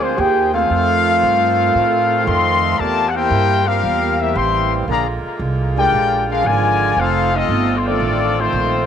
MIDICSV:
0, 0, Header, 1, 6, 480
1, 0, Start_track
1, 0, Key_signature, -1, "major"
1, 0, Tempo, 521739
1, 647, Time_signature, 4, 2, 24, 8
1, 8154, End_track
2, 0, Start_track
2, 0, Title_t, "Trumpet section"
2, 0, Program_c, 0, 61
2, 22, Note_on_c, 0, 62, 80
2, 23, Note_on_c, 0, 56, 86
2, 24, Note_on_c, 0, 65, 85
2, 26, Note_on_c, 0, 72, 89
2, 158, Note_off_c, 0, 72, 0
2, 167, Note_on_c, 0, 63, 88
2, 169, Note_off_c, 0, 62, 0
2, 169, Note_on_c, 0, 72, 97
2, 170, Note_off_c, 0, 56, 0
2, 170, Note_off_c, 0, 65, 0
2, 171, Note_on_c, 0, 68, 88
2, 175, Note_on_c, 0, 79, 102
2, 488, Note_off_c, 0, 72, 0
2, 489, Note_off_c, 0, 63, 0
2, 498, Note_on_c, 0, 77, 111
2, 499, Note_on_c, 0, 72, 86
2, 500, Note_off_c, 0, 68, 0
2, 500, Note_on_c, 0, 63, 85
2, 500, Note_on_c, 0, 69, 84
2, 502, Note_off_c, 0, 79, 0
2, 2051, Note_off_c, 0, 77, 0
2, 2052, Note_off_c, 0, 63, 0
2, 2052, Note_off_c, 0, 69, 0
2, 2052, Note_off_c, 0, 72, 0
2, 2082, Note_on_c, 0, 77, 104
2, 2088, Note_on_c, 0, 69, 98
2, 2089, Note_on_c, 0, 84, 108
2, 2091, Note_on_c, 0, 75, 100
2, 2564, Note_on_c, 0, 74, 103
2, 2565, Note_off_c, 0, 77, 0
2, 2565, Note_on_c, 0, 70, 100
2, 2565, Note_on_c, 0, 81, 112
2, 2568, Note_off_c, 0, 69, 0
2, 2569, Note_off_c, 0, 84, 0
2, 2570, Note_off_c, 0, 75, 0
2, 2571, Note_on_c, 0, 65, 107
2, 2808, Note_off_c, 0, 74, 0
2, 2809, Note_off_c, 0, 70, 0
2, 2809, Note_off_c, 0, 81, 0
2, 2812, Note_off_c, 0, 65, 0
2, 2836, Note_on_c, 0, 78, 84
2, 2904, Note_on_c, 0, 72, 102
2, 2904, Note_on_c, 0, 79, 123
2, 2905, Note_on_c, 0, 70, 105
2, 2908, Note_on_c, 0, 64, 109
2, 2912, Note_off_c, 0, 78, 0
2, 3374, Note_off_c, 0, 70, 0
2, 3377, Note_on_c, 0, 60, 89
2, 3380, Note_on_c, 0, 77, 107
2, 3382, Note_off_c, 0, 72, 0
2, 3382, Note_off_c, 0, 79, 0
2, 3383, Note_on_c, 0, 67, 91
2, 3384, Note_off_c, 0, 64, 0
2, 3385, Note_on_c, 0, 70, 95
2, 3854, Note_off_c, 0, 60, 0
2, 3854, Note_off_c, 0, 70, 0
2, 3857, Note_off_c, 0, 67, 0
2, 3860, Note_off_c, 0, 77, 0
2, 3865, Note_on_c, 0, 60, 81
2, 3865, Note_on_c, 0, 70, 82
2, 3868, Note_on_c, 0, 67, 83
2, 3869, Note_on_c, 0, 76, 98
2, 4002, Note_off_c, 0, 76, 0
2, 4003, Note_off_c, 0, 70, 0
2, 4011, Note_on_c, 0, 79, 95
2, 4012, Note_off_c, 0, 60, 0
2, 4013, Note_off_c, 0, 67, 0
2, 4013, Note_on_c, 0, 76, 96
2, 4014, Note_on_c, 0, 70, 94
2, 4016, Note_on_c, 0, 84, 113
2, 4363, Note_off_c, 0, 70, 0
2, 4363, Note_off_c, 0, 76, 0
2, 4363, Note_off_c, 0, 79, 0
2, 4364, Note_off_c, 0, 84, 0
2, 4507, Note_on_c, 0, 68, 88
2, 4511, Note_on_c, 0, 74, 77
2, 4513, Note_on_c, 0, 82, 96
2, 4515, Note_on_c, 0, 77, 82
2, 4652, Note_off_c, 0, 68, 0
2, 4655, Note_off_c, 0, 74, 0
2, 4656, Note_off_c, 0, 82, 0
2, 4658, Note_off_c, 0, 77, 0
2, 5319, Note_on_c, 0, 65, 97
2, 5322, Note_on_c, 0, 74, 100
2, 5322, Note_on_c, 0, 79, 120
2, 5323, Note_on_c, 0, 70, 94
2, 5756, Note_off_c, 0, 65, 0
2, 5758, Note_off_c, 0, 74, 0
2, 5758, Note_off_c, 0, 79, 0
2, 5759, Note_off_c, 0, 70, 0
2, 5803, Note_on_c, 0, 77, 108
2, 5805, Note_on_c, 0, 68, 96
2, 5806, Note_on_c, 0, 62, 91
2, 5806, Note_on_c, 0, 70, 86
2, 5941, Note_off_c, 0, 77, 0
2, 5942, Note_off_c, 0, 62, 0
2, 5942, Note_off_c, 0, 68, 0
2, 5942, Note_off_c, 0, 70, 0
2, 5950, Note_on_c, 0, 65, 102
2, 5950, Note_on_c, 0, 74, 99
2, 5950, Note_on_c, 0, 80, 125
2, 5952, Note_on_c, 0, 70, 97
2, 6419, Note_off_c, 0, 65, 0
2, 6419, Note_off_c, 0, 80, 0
2, 6420, Note_off_c, 0, 70, 0
2, 6420, Note_off_c, 0, 74, 0
2, 6437, Note_on_c, 0, 72, 108
2, 6438, Note_on_c, 0, 77, 112
2, 6440, Note_on_c, 0, 63, 106
2, 6443, Note_on_c, 0, 69, 103
2, 6752, Note_off_c, 0, 69, 0
2, 6754, Note_off_c, 0, 72, 0
2, 6754, Note_off_c, 0, 77, 0
2, 6755, Note_off_c, 0, 63, 0
2, 6763, Note_on_c, 0, 69, 97
2, 6766, Note_on_c, 0, 65, 96
2, 6766, Note_on_c, 0, 75, 107
2, 6769, Note_on_c, 0, 60, 94
2, 7142, Note_off_c, 0, 69, 0
2, 7144, Note_off_c, 0, 65, 0
2, 7144, Note_off_c, 0, 75, 0
2, 7145, Note_off_c, 0, 60, 0
2, 7146, Note_on_c, 0, 72, 76
2, 7227, Note_off_c, 0, 72, 0
2, 7237, Note_on_c, 0, 74, 99
2, 7239, Note_on_c, 0, 65, 87
2, 7240, Note_on_c, 0, 69, 93
2, 7242, Note_on_c, 0, 60, 93
2, 7708, Note_off_c, 0, 74, 0
2, 7709, Note_off_c, 0, 65, 0
2, 7709, Note_off_c, 0, 69, 0
2, 7710, Note_off_c, 0, 60, 0
2, 7727, Note_on_c, 0, 65, 88
2, 7729, Note_on_c, 0, 57, 90
2, 7729, Note_on_c, 0, 63, 86
2, 7730, Note_on_c, 0, 72, 112
2, 8154, Note_off_c, 0, 57, 0
2, 8154, Note_off_c, 0, 63, 0
2, 8154, Note_off_c, 0, 65, 0
2, 8154, Note_off_c, 0, 72, 0
2, 8154, End_track
3, 0, Start_track
3, 0, Title_t, "Trombone section"
3, 0, Program_c, 1, 61
3, 13, Note_on_c, 1, 60, 84
3, 163, Note_on_c, 1, 67, 99
3, 164, Note_off_c, 1, 60, 0
3, 494, Note_on_c, 1, 65, 93
3, 495, Note_on_c, 1, 57, 98
3, 496, Note_off_c, 1, 67, 0
3, 500, Note_on_c, 1, 60, 94
3, 2049, Note_off_c, 1, 65, 0
3, 2050, Note_off_c, 1, 57, 0
3, 2052, Note_off_c, 1, 60, 0
3, 2074, Note_on_c, 1, 57, 99
3, 2076, Note_on_c, 1, 51, 97
3, 2076, Note_on_c, 1, 60, 103
3, 2537, Note_off_c, 1, 57, 0
3, 2548, Note_on_c, 1, 57, 87
3, 2562, Note_off_c, 1, 51, 0
3, 2562, Note_off_c, 1, 60, 0
3, 2800, Note_off_c, 1, 57, 0
3, 2883, Note_on_c, 1, 58, 84
3, 2885, Note_on_c, 1, 64, 91
3, 2885, Note_on_c, 1, 67, 90
3, 3355, Note_off_c, 1, 58, 0
3, 3366, Note_on_c, 1, 58, 89
3, 3367, Note_on_c, 1, 55, 79
3, 3367, Note_on_c, 1, 65, 81
3, 3372, Note_off_c, 1, 64, 0
3, 3372, Note_off_c, 1, 67, 0
3, 3836, Note_off_c, 1, 58, 0
3, 3842, Note_off_c, 1, 55, 0
3, 3847, Note_on_c, 1, 58, 87
3, 3850, Note_on_c, 1, 64, 81
3, 3853, Note_on_c, 1, 55, 79
3, 3854, Note_off_c, 1, 65, 0
3, 3988, Note_off_c, 1, 55, 0
3, 3999, Note_on_c, 1, 55, 95
3, 4001, Note_on_c, 1, 60, 99
3, 4002, Note_on_c, 1, 52, 99
3, 4003, Note_off_c, 1, 58, 0
3, 4004, Note_off_c, 1, 64, 0
3, 4484, Note_off_c, 1, 55, 0
3, 4485, Note_off_c, 1, 52, 0
3, 4485, Note_off_c, 1, 60, 0
3, 4489, Note_on_c, 1, 58, 81
3, 4490, Note_on_c, 1, 50, 84
3, 4492, Note_on_c, 1, 53, 78
3, 4636, Note_off_c, 1, 58, 0
3, 4637, Note_off_c, 1, 50, 0
3, 4639, Note_off_c, 1, 53, 0
3, 5298, Note_on_c, 1, 67, 93
3, 5302, Note_on_c, 1, 62, 92
3, 5309, Note_on_c, 1, 56, 95
3, 5745, Note_off_c, 1, 67, 0
3, 5747, Note_off_c, 1, 62, 0
3, 5751, Note_off_c, 1, 56, 0
3, 5784, Note_on_c, 1, 62, 95
3, 5787, Note_on_c, 1, 65, 94
3, 5788, Note_on_c, 1, 56, 91
3, 5924, Note_off_c, 1, 56, 0
3, 5931, Note_off_c, 1, 62, 0
3, 5931, Note_on_c, 1, 53, 105
3, 5932, Note_on_c, 1, 50, 113
3, 5933, Note_off_c, 1, 65, 0
3, 5935, Note_on_c, 1, 56, 107
3, 6405, Note_on_c, 1, 65, 101
3, 6408, Note_on_c, 1, 57, 93
3, 6409, Note_on_c, 1, 60, 98
3, 6410, Note_off_c, 1, 50, 0
3, 6410, Note_off_c, 1, 53, 0
3, 6412, Note_off_c, 1, 56, 0
3, 6730, Note_off_c, 1, 57, 0
3, 6735, Note_off_c, 1, 60, 0
3, 6738, Note_off_c, 1, 65, 0
3, 6740, Note_on_c, 1, 63, 90
3, 6741, Note_on_c, 1, 57, 91
3, 6746, Note_on_c, 1, 60, 85
3, 7131, Note_off_c, 1, 57, 0
3, 7131, Note_off_c, 1, 63, 0
3, 7134, Note_off_c, 1, 60, 0
3, 7229, Note_on_c, 1, 62, 77
3, 7231, Note_on_c, 1, 51, 92
3, 7232, Note_on_c, 1, 57, 90
3, 7689, Note_off_c, 1, 51, 0
3, 7690, Note_off_c, 1, 57, 0
3, 7697, Note_on_c, 1, 60, 89
3, 7700, Note_on_c, 1, 51, 86
3, 7701, Note_on_c, 1, 57, 85
3, 7704, Note_off_c, 1, 62, 0
3, 8154, Note_off_c, 1, 51, 0
3, 8154, Note_off_c, 1, 57, 0
3, 8154, Note_off_c, 1, 60, 0
3, 8154, End_track
4, 0, Start_track
4, 0, Title_t, "Saxophone section"
4, 0, Program_c, 2, 65
4, 0, Note_on_c, 2, 53, 80
4, 0, Note_on_c, 2, 56, 66
4, 0, Note_on_c, 2, 58, 74
4, 0, Note_on_c, 2, 68, 98
4, 611, Note_off_c, 2, 56, 0
4, 613, Note_off_c, 2, 53, 0
4, 614, Note_off_c, 2, 58, 0
4, 620, Note_off_c, 2, 68, 0
4, 657, Note_on_c, 2, 60, 68
4, 659, Note_on_c, 2, 65, 87
4, 661, Note_on_c, 2, 57, 67
4, 663, Note_on_c, 2, 51, 80
4, 2410, Note_off_c, 2, 51, 0
4, 2410, Note_off_c, 2, 57, 0
4, 2410, Note_off_c, 2, 65, 0
4, 2567, Note_on_c, 2, 55, 76
4, 2570, Note_on_c, 2, 67, 75
4, 2576, Note_on_c, 2, 58, 66
4, 4457, Note_off_c, 2, 60, 0
4, 4469, Note_off_c, 2, 55, 0
4, 4470, Note_off_c, 2, 67, 0
4, 4485, Note_on_c, 2, 65, 88
4, 4489, Note_on_c, 2, 50, 79
4, 4493, Note_on_c, 2, 56, 68
4, 6376, Note_off_c, 2, 58, 0
4, 6390, Note_off_c, 2, 50, 0
4, 6392, Note_off_c, 2, 56, 0
4, 6418, Note_on_c, 2, 53, 83
4, 6419, Note_on_c, 2, 60, 72
4, 6422, Note_on_c, 2, 57, 75
4, 8154, Note_off_c, 2, 53, 0
4, 8154, Note_off_c, 2, 57, 0
4, 8154, Note_off_c, 2, 60, 0
4, 8154, Note_off_c, 2, 65, 0
4, 8154, End_track
5, 0, Start_track
5, 0, Title_t, "Upright bass"
5, 0, Program_c, 3, 32
5, 0, Note_on_c, 3, 38, 91
5, 153, Note_off_c, 3, 38, 0
5, 166, Note_on_c, 3, 39, 100
5, 632, Note_off_c, 3, 39, 0
5, 643, Note_on_c, 3, 41, 86
5, 1111, Note_off_c, 3, 41, 0
5, 1133, Note_on_c, 3, 43, 98
5, 1596, Note_off_c, 3, 43, 0
5, 1610, Note_on_c, 3, 45, 84
5, 2075, Note_off_c, 3, 45, 0
5, 2090, Note_on_c, 3, 41, 110
5, 2555, Note_off_c, 3, 41, 0
5, 2570, Note_on_c, 3, 40, 90
5, 3035, Note_off_c, 3, 40, 0
5, 3041, Note_on_c, 3, 43, 100
5, 3510, Note_off_c, 3, 43, 0
5, 3528, Note_on_c, 3, 40, 96
5, 3994, Note_off_c, 3, 40, 0
5, 4007, Note_on_c, 3, 33, 102
5, 4473, Note_off_c, 3, 33, 0
5, 4487, Note_on_c, 3, 34, 88
5, 4796, Note_off_c, 3, 34, 0
5, 4963, Note_on_c, 3, 36, 91
5, 5431, Note_off_c, 3, 36, 0
5, 5448, Note_on_c, 3, 34, 96
5, 5914, Note_off_c, 3, 34, 0
5, 5927, Note_on_c, 3, 32, 97
5, 6394, Note_off_c, 3, 32, 0
5, 6407, Note_on_c, 3, 29, 86
5, 6873, Note_off_c, 3, 29, 0
5, 6886, Note_on_c, 3, 31, 98
5, 7353, Note_off_c, 3, 31, 0
5, 7360, Note_on_c, 3, 33, 97
5, 7830, Note_off_c, 3, 33, 0
5, 7844, Note_on_c, 3, 34, 101
5, 8154, Note_off_c, 3, 34, 0
5, 8154, End_track
6, 0, Start_track
6, 0, Title_t, "Muted upright bass strokes"
6, 4816, Note_on_c, 9, 29, 42
6, 4908, Note_off_c, 9, 29, 0
6, 8154, End_track
0, 0, End_of_file